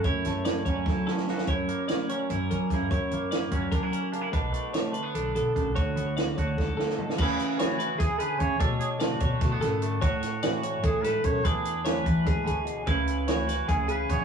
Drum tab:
CC |--------------|--------------|--------------|--------------|
HH |x-x-x-x-------|x-x-x-x-x-x-x-|x-x-x-x-x-x-x-|x-x-x-x-x-x-x-|
SD |--o-o---o-oooo|----o-------o-|----o---------|----o---------|
FT |--------------|--------------|--------------|--------------|
BD |o-----o-o-----|o-----------o-|o-----o-o-----|o-----------o-|

CC |--------------|x-------------|--------------|--------------|
HH |x-x-x-x-------|--x-x-x-x-x-x-|x-x-x-x-x-x-x-|x-x-x-x-x-x-x-|
SD |----o---o-oo-o|----o---o-----|----o---o-o---|--o-o-----o---|
FT |------------o-|--------------|--------------|--------------|
BD |o-----o-oo----|o-------o---o-|o-----o-o-----|o-------o---o-|

CC |--------------|--------------|
HH |x-x-x-x-x-x-x-|x-x-x-x-x-x-x-|
SD |----o---------|----o-o-------|
FT |--------------|--------------|
BD |o-----o-o-----|o-------o---o-|